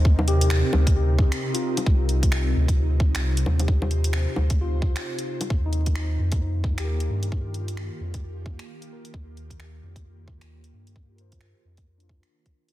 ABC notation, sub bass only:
X:1
M:4/4
L:1/16
Q:"Swing 16ths" 1/4=132
K:Eb
V:1 name="Sub bass" clef=bass
E,,4- E,, z D,,4- D,, z4 z | C,,6 D,,4- D,, C,,3 E,,2- | E,,4- E,, z D,,4- D,, z4 z | E,,6 F,,4- F,, E,,3 G,,2- |
G,,4- G,, z F,,4- F,, z4 z | E,,6 F,,4- F,, E,,3 G,,2- | G,,4- G,, z F,,4- F,, z4 z |]